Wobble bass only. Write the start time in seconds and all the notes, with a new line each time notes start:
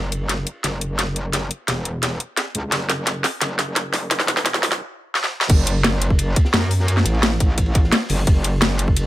Already playing: F#1
0.64 F#1
1.68 E1
2.55 C#2
2.72 F#1
3.41 F#1
4.28 E1
5.50 F#1
6.54 F#2
7.06 A1
7.40 A1
8.10 F#1
8.27 F#1